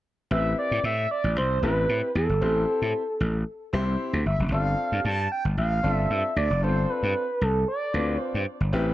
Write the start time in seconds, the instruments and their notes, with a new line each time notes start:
0.31 slap bass A1, grand piano C4 E4 G4 B4, analog synth lead E5
0.59 analog synth lead D5
0.71 slap bass A2
0.84 slap bass A2, analog synth lead E5
1.11 analog synth lead D5
1.24 slap bass A1
1.36 slap bass C2, analog synth lead C5
1.62 slap bass A1, grand piano C4 E4 G4 B4, analog synth lead B4
1.89 slap bass A2
2.15 slap bass E2, analog synth lead A4
2.29 slap bass G1
2.41 slap bass A1, grand piano C4 E4 G4 C5
2.82 slap bass A2
3.20 slap bass A1
3.73 slap bass C2, grand piano C4 E4 G4 C5
4.13 slap bass D2
4.26 slap bass G1, analog synth lead E5
4.39 slap bass F1
4.52 slap bass G1, grand piano C4 D4 F4 A4, analog synth lead F5
4.92 slap bass G2
5.05 slap bass G2, analog synth lead A5
5.32 analog synth lead G5
5.45 slap bass G1
5.57 slap bass A1, analog synth lead F5
5.83 slap bass G1, grand piano C4 D4 F4 A4
5.94 analog synth lead E5
6.10 slap bass G2, analog synth lead E5
6.36 slap bass D2, analog synth lead D5
6.50 slap bass F1
6.62 slap bass G1, grand piano B3 D4 F4 A4, analog synth lead C5
6.68 grand piano C4
6.90 analog synth lead B4
7.03 slap bass G2
7.41 slap bass C2, analog synth lead A4
7.68 analog synth lead D5
7.93 slap bass D2, grand piano C4 D4 F4 B4
8.23 analog synth lead C5
8.34 slap bass G2
8.60 slap bass G1
8.72 slap bass A1, grand piano C4 E4 G4 B4